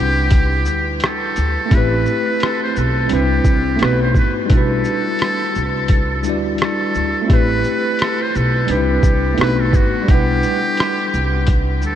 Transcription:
Already playing: C2 G3 D4 E4 G4 B4 F#5
0.30 kick, closed hi-hat
0.65 D2, shaker
1.00 cross-stick, closed hi-hat
1.06 A4
1.36 D2, closed hi-hat, shaker
1.66 A3 C4
1.71 A1 E4 G4 B4, kick, closed hi-hat
1.77 B4
2.06 shaker
2.40 A4, cross-stick, closed hi-hat
2.63 C5
2.76 B1 A4, shaker
3.08 G3 C4 D4, closed hi-hat
3.12 C2 E4 G4 B4
3.44 C2, kick, shaker
3.76 A3 B3 D#4, closed hi-hat
3.81 B1 F#4 B4, cross-stick
4.02 C5
4.15 G1, kick, shaker
4.19 B4
4.46 G3 D4, closed hi-hat
4.50 B1 E4 A4, kick
4.55 F#4 B4
4.84 shaker
5.19 cross-stick, closed hi-hat
5.55 C2, shaker
5.88 kick, closed hi-hat
6.23 D2 G3 D4 E4, shaker
6.28 F#4 D5
6.58 cross-stick, closed hi-hat
6.63 A4
6.95 D2, shaker
7.22 A3 C4
7.28 A1 E4 G4, kick, closed hi-hat
7.33 B4
7.64 shaker
7.99 A4, cross-stick, closed hi-hat
8.22 C5
8.35 B1 A4, shaker
8.66 C2 G3 C4 D4, closed hi-hat
8.71 D#4 G4 B4
8.77 E4
9.03 C2, kick, shaker
9.34 A3 B3 D#4, closed hi-hat
9.38 B1 F#4 B4, cross-stick
9.60 A4
9.73 G1 F#4, kick, shaker
10.02 G3 D4
10.08 B1 E4 G4 F#5, kick, closed hi-hat
10.14 B4
10.43 shaker
10.77 cross-stick, closed hi-hat
11.13 C2, shaker
11.47 kick, closed hi-hat
11.82 D2 A4, shaker

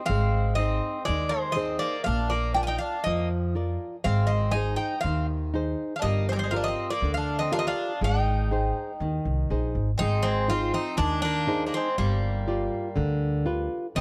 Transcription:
0.06 G#1 C4 F5
0.10 G#3
0.55 C4 D#4 G#4 D#5
0.59 C5
1.05 D#2 D#3 G#3 D5
1.29 G#3 C5
1.52 C4 D#4 D#5
1.56 G#4 C5
1.79 A#3 D5
2.04 A#1 A#3 D4 F5
2.30 A#3 D5
2.54 D4 F4 A#4 D5 G5
2.63 F4 G#5
2.67 D#4 G5
2.78 D4 F5
3.04 F2 F3 A#3 D#5
3.55 F4 A#4 D5
4.04 G#1 G#3 C4 F5
4.27 C4 D#5
4.51 D#4 G#4 G#5
4.56 C5
4.76 D#4 G5
5.01 D#2 C4 F5
5.06 D#3
5.54 D#4 G#4 C5
5.96 D4 F5
6.02 G1 G3 A#3 D#5
6.29 G#3 C5
6.33 G3 A#4
6.39 C5
6.44 G#3
6.51 F4 G4 A#4 F5
6.56 D4
6.64 D#5
6.68 C4
6.90 A#3 D5
7.02 D2 D3
7.14 D4 F5
7.39 C4 D#5
7.52 D4 F4 G4 A#4 F5
7.59 C4 D#5
7.67 D4 F5
8.01 G#1 G#3 D#4 G5
8.51 D#4 G#4 C5
9.00 D#2 D#3
9.25 C2
9.50 A#1 D#4 G#4 C5
9.75 G#1
9.98 G#1 G#3 C4 D#4
10.23 G#3 C4
10.48 C4 D#4 F4 G#4 C5
10.74 C4 D#4
10.97 D#2 D#3 G#3 D4
11.22 A#3 D4
11.47 D#4 G#4 C5
11.67 A#3 D4
11.74 G#3 C4
11.98 G1 G3 A#3
12.48 F4 G4 D5
12.96 D2 D3
13.46 F4 G4 B4
13.95 C2 C3 C4 D#4

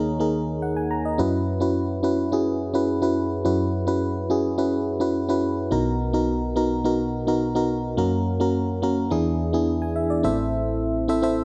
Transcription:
Already playing: D#2 D#3 A#3 D#4 G#4 A#4 C#5
0.19 A#3 D#4 G#4 A#4
0.62 F#5
0.77 G#5
0.91 A#5
1.05 D#5
1.18 F#2 C#4 E4 F#4 B4
1.60 C#4 E4 F#4 B4
2.03 C#4 E4 F#4 B4
2.32 C#4 E4 F#4 G#4
2.74 C#4 E4 F#4 B4
3.02 C#4 E4 F#4 B4
3.45 F#2 C#4 E4 F#4 B4
3.87 C#4 E4 F#4 B4
4.30 C#4 E4 F#4 G#4
4.58 C#4 E4 F#4 B4
5.00 C#4 E4 F#4 B4
5.29 C#4 E4 F#4 B4
5.71 B1 B2 B3 D#4 F#4 A#4
6.13 B3 D#4 F#4 A#4
6.56 B3 D#4 F#4 A#4
6.84 B3 D#4 F#4 A#4
7.27 B3 D#4 F#4 A#4
7.55 B3 D#4 F#4 A#4
7.97 F#2 A#3 C#4 F#4 A#4
8.40 A#3 C#4 F#4 A#4
8.82 A#3 C#4 F#4 A#4
9.10 E2 E3 B3 D4 E4 G#4
9.53 B3 D4 E4 G#4
9.82 G#5
9.96 E5
10.10 D5
10.23 A1 A2 C4 E4 A4 C5 E5
11.08 C4 E4 A4 C5 E5
11.22 C4 E4 A4 C5 E5

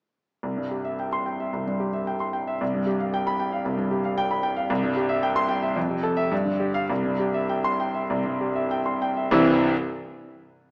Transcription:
0.43 C2
0.57 G2
0.71 G4
0.85 E5
1.00 G5
1.13 C6
1.26 G5
1.40 E5
1.53 C2
1.67 G2
1.80 G4
1.93 E5
2.07 G5
2.20 C6
2.33 G5
2.48 E5
2.61 C2
2.74 G2
2.86 G4
3.00 F5
3.14 G5
3.27 B5
3.40 G5
3.52 F5
3.65 C2
3.77 G2
3.91 G4
4.05 F5
4.18 G5
4.31 B5
4.43 G5
4.56 F5
4.70 C2
4.83 G2
4.97 G4
5.09 E5
5.23 G5
5.36 C6
5.49 G5
5.63 E5
5.76 F2
5.89 C3
6.03 A4
6.17 E5
6.31 G2
6.45 D3
6.60 G4
6.74 F5
6.90 C2
7.05 G2
7.20 G4
7.34 E5
7.49 G5
7.64 C6
7.80 G5
7.94 E5
8.10 C2
8.26 G2
8.41 G4
8.55 E5
8.71 G5
8.86 C6
9.02 G5
9.17 E5
9.31 C2 G2 E3 G3 C4 E4

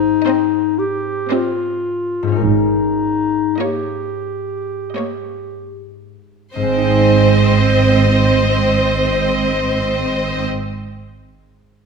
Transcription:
Already playing: G#2 C4 D#4 C5
0.25 C4 C5 D#5
0.79 G4
1.30 C4 F4 C5 D#5
2.23 G#2
2.27 C#4
2.32 D#4
2.36 A#4
2.41 G#1 G#2 D#4
3.59 A#3 G4 C#5 D#5
4.95 A#3 C#5 D#5
6.55 G#1 G#2 C4 C5 D#5
6.63 G#3
6.69 C4
6.77 D#4
6.84 G#4
6.90 D#5

